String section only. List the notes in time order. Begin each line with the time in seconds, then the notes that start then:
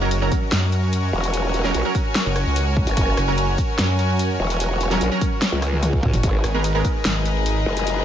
Already playing: F#4 G#4 C#5 D#5 A#5
0.86 G#5
6.23 G#4
6.85 D#5
7.26 A#5